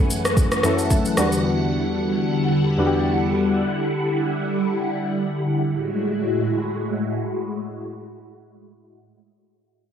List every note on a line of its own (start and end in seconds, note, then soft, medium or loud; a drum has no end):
0.00 0.63 F#2 medium
0.00 1.13 E3 medium
0.00 0.64 A3 medium
0.00 1.13 A3 medium
0.00 0.65 C#4 medium
0.00 0.65 E4 medium
0.00 0.66 A4 medium
0.00 0.17 B4 medium
0.00 5.69 F#5 medium
0.00 1.13 G#5 medium
0.10 shaker medium
0.25 cross-stick medium
0.25 shaker medium
0.37 kick loud
0.37 shaker medium
0.52 cross-stick medium
0.52 shaker soft
0.63 1.17 F#2 medium
0.63 1.17 A3 medium
0.63 1.18 C#4 medium
0.63 1.18 E4 medium
0.63 1.18 A4 loud
0.63 0.89 E5 medium
0.63 cross-stick medium
0.63 shaker medium
0.78 shaker medium
0.90 1.41 A5 medium
0.90 kick medium
0.90 shaker medium
1.05 shaker soft
1.17 2.03 E2 medium
1.17 5.68 D3 medium
1.17 5.69 G3 medium
1.17 2.04 G3 medium
1.17 2.04 B3 medium
1.17 2.04 D4 medium
1.17 5.68 E4 medium
1.17 2.05 F#4 medium
1.17 cross-stick medium
1.17 shaker loud
1.32 shaker medium
2.77 3.43 E2 medium
2.77 3.43 G3 medium
2.77 3.44 B3 medium
2.77 3.44 D4 medium
2.77 2.86 F#4 medium
2.87 3.48 G4 loud
5.72 8.72 A2 medium
5.72 8.72 G#3 medium
5.72 8.72 E4 medium
5.72 8.72 F#4 medium